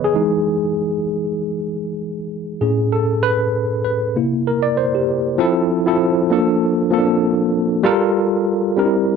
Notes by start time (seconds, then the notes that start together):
Already playing: C#3 E3 B3 G#4 B4 C#5 D#5
0.04 G#4
0.14 E3 G#3 D#4
2.61 A2 C#4 G#4
2.92 A4
3.23 B4
3.85 B4
4.16 C3 A#3 E4
4.47 A#4
4.63 D5
4.77 C5
4.95 G4
5.38 F3 C4 E4 A4
5.86 F3 C4 E4 A4
6.29 F3 A#3 D4 A4
6.91 F3 A#3 C4 A4
6.99 D4
7.83 G3 F4 A4 A#4
8.76 G3 C4 D4 A#4
8.85 E4